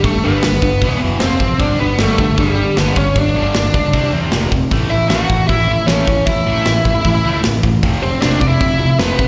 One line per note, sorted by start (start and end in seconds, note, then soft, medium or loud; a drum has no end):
0.04 0.17 G1 medium
0.04 0.22 G2 medium
0.04 0.22 D3 medium
0.04 0.23 A3 medium
0.04 0.24 A4 loud
0.04 kick loud
0.04 open hi-hat medium
0.24 0.37 G1 medium
0.24 0.42 G2 medium
0.24 0.42 D3 medium
0.24 0.42 G3 medium
0.24 0.98 B3 medium
0.24 0.98 B4 medium
0.43 0.57 G1 medium
0.43 0.61 G2 medium
0.43 0.61 D3 medium
0.43 snare loud
0.43 open hi-hat medium
0.62 0.75 G1 medium
0.62 0.80 G2 medium
0.62 0.80 D3 medium
0.62 kick medium
0.81 0.95 E1 medium
0.81 1.01 E2 medium
0.81 1.01 B2 medium
0.81 1.01 E3 loud
0.81 kick loud
0.81 open hi-hat medium
1.02 1.15 F#1 medium
1.02 1.20 E2 medium
1.02 1.21 B2 medium
1.02 1.21 E3 medium
1.20 1.34 F1 medium
1.20 1.39 F2 medium
1.20 1.39 C3 medium
1.20 1.40 F3 medium
1.20 1.57 C4 medium
1.20 1.61 C5 medium
1.20 snare loud
1.20 open hi-hat medium
1.39 1.52 A1 medium
1.39 1.58 F2 medium
1.39 1.58 C3 medium
1.39 kick medium
1.59 1.73 G1 medium
1.59 1.78 G2 medium
1.59 1.78 D3 loud
1.59 1.78 G3 loud
1.59 1.78 D4 medium
1.59 1.78 D5 medium
1.59 kick loud
1.59 open hi-hat soft
1.80 1.93 G1 medium
1.80 1.98 G2 medium
1.80 1.98 D3 medium
1.80 1.98 B3 medium
1.80 2.00 B4 medium
1.99 2.12 G1 medium
1.99 2.18 G2 medium
1.99 2.18 D3 medium
1.99 2.18 G3 medium
1.99 2.35 A3 medium
1.99 2.39 A4 medium
1.99 snare loud
1.99 open hi-hat medium
2.18 2.31 G1 medium
2.18 2.36 G2 medium
2.18 2.36 D3 medium
2.18 kick medium
2.38 2.63 G1 medium
2.38 2.56 G2 medium
2.38 2.56 D3 medium
2.38 2.75 G3 medium
2.38 2.79 G4 medium
2.38 kick loud
2.38 open hi-hat soft
2.58 2.75 G2 medium
2.58 2.75 D3 medium
2.77 2.90 G1 medium
2.77 2.96 G2 medium
2.77 2.96 D3 medium
2.77 2.96 G3 medium
2.77 2.95 B3 medium
2.77 2.97 B4 medium
2.77 snare loud
2.77 open hi-hat medium
2.96 3.09 G1 medium
2.96 3.14 G2 medium
2.96 3.14 D3 medium
2.96 3.15 C#4 medium
2.96 3.17 C#5 medium
2.96 kick medium
3.15 3.28 G1 medium
3.15 3.33 G2 medium
3.15 3.34 D3 medium
3.15 3.53 D4 medium
3.15 3.54 D5 medium
3.15 kick loud
3.15 open hi-hat medium
3.35 3.48 G1 medium
3.35 3.53 G2 medium
3.35 3.54 D3 medium
3.35 3.54 G3 medium
3.55 3.67 G1 medium
3.55 3.72 G2 medium
3.55 3.72 D3 medium
3.55 4.10 D4 medium
3.55 4.10 D5 medium
3.55 snare loud
3.55 open hi-hat medium
3.74 3.94 C#2 medium
3.74 3.92 G2 medium
3.74 3.92 D3 medium
3.74 kick medium
3.93 4.06 C2 medium
3.93 4.12 C3 medium
3.93 4.12 G3 medium
3.93 4.12 C4 medium
3.93 kick loud
3.93 open hi-hat medium
4.13 4.26 E2 medium
4.13 4.31 C3 medium
4.13 4.31 G3 medium
4.13 4.32 C4 medium
4.32 4.45 F1 medium
4.32 4.50 F2 medium
4.32 4.51 C3 medium
4.32 4.51 F3 loud
4.32 snare loud
4.32 open hi-hat medium
4.52 4.64 F1 medium
4.52 4.69 F2 medium
4.52 4.70 C3 medium
4.52 kick medium
4.71 4.84 A1 medium
4.71 4.90 A2 medium
4.71 4.90 E3 medium
4.71 4.90 A3 medium
4.71 kick loud
4.71 open hi-hat medium
4.90 5.03 A1 medium
4.90 5.09 A2 medium
4.90 5.09 E3 medium
4.90 5.09 E4 medium
4.90 5.09 E5 medium
5.09 5.23 A1 medium
5.09 5.29 A2 medium
5.09 5.29 E3 medium
5.09 5.29 A3 loud
5.09 5.47 F#4 medium
5.09 5.47 F#5 medium
5.09 snare loud
5.09 open hi-hat medium
5.30 5.42 A1 medium
5.30 5.47 A2 medium
5.30 5.48 E3 medium
5.30 kick medium
5.48 5.74 A1 medium
5.48 5.66 A2 medium
5.48 5.67 E3 medium
5.48 5.85 E4 medium
5.48 5.89 E5 medium
5.48 kick loud
5.48 open hi-hat soft
5.67 5.86 A2 medium
5.67 5.86 E3 medium
5.86 6.00 A1 medium
5.86 6.06 A2 medium
5.86 6.06 E3 medium
5.86 6.06 A3 loud
5.86 6.24 C#4 medium
5.86 6.27 C#5 medium
5.86 snare loud
5.86 open hi-hat medium
6.07 6.20 A1 medium
6.07 6.25 A2 medium
6.07 6.25 E3 medium
6.07 kick medium
6.26 6.39 A1 medium
6.26 6.44 A2 medium
6.26 6.44 E3 medium
6.26 7.40 E4 medium
6.26 7.39 E5 medium
6.26 kick loud
6.26 open hi-hat medium
6.46 6.59 A1 medium
6.46 6.65 A2 medium
6.46 6.65 E3 medium
6.46 6.65 A3 loud
6.66 6.78 A1 medium
6.66 6.84 A2 medium
6.66 6.84 E3 medium
6.66 snare loud
6.66 open hi-hat medium
6.85 6.98 A1 medium
6.85 7.03 A2 medium
6.85 7.03 E3 medium
6.85 kick medium
7.05 7.18 A1 medium
7.05 7.23 A2 medium
7.05 7.23 E3 medium
7.05 kick loud
7.05 open hi-hat medium
7.24 7.37 C#2 medium
7.24 7.43 A2 medium
7.24 7.43 E3 medium
7.24 7.43 A3 medium
7.44 7.58 A1 medium
7.44 7.62 A2 medium
7.44 7.62 E3 medium
7.44 snare loud
7.44 open hi-hat medium
7.63 7.76 A1 medium
7.63 7.81 A2 medium
7.63 7.81 E3 medium
7.63 kick medium
7.83 7.95 F1 medium
7.83 8.01 F2 medium
7.83 8.02 C3 medium
7.83 8.02 F3 loud
7.83 kick loud
7.83 open hi-hat medium
8.02 8.15 F1 medium
8.02 8.20 F2 medium
8.02 8.20 C3 medium
8.02 8.21 C4 medium
8.02 8.21 C5 medium
8.21 8.35 F1 medium
8.21 8.40 F2 medium
8.21 8.41 C3 medium
8.21 8.41 F3 medium
8.21 8.39 D4 medium
8.21 8.39 D5 loud
8.21 snare loud
8.21 open hi-hat medium
8.40 8.54 F1 medium
8.40 8.59 F2 medium
8.40 8.59 C3 medium
8.40 8.48 D5 medium
8.40 kick medium
8.47 8.96 E4 medium
8.47 8.99 E5 loud
8.60 8.86 F1 medium
8.60 8.78 F2 medium
8.60 8.78 C3 medium
8.60 kick loud
8.60 open hi-hat soft
8.79 8.97 F2 medium
8.79 8.98 C3 medium
8.99 9.12 F1 loud
8.99 9.18 F2 medium
8.99 9.18 C3 medium
8.99 9.18 F3 medium
8.99 9.28 B3 medium
8.99 9.28 B4 loud
8.99 snare loud
8.99 open hi-hat medium
9.19 9.28 F1 medium
9.19 9.28 F2 medium
9.19 9.28 C3 medium
9.19 kick medium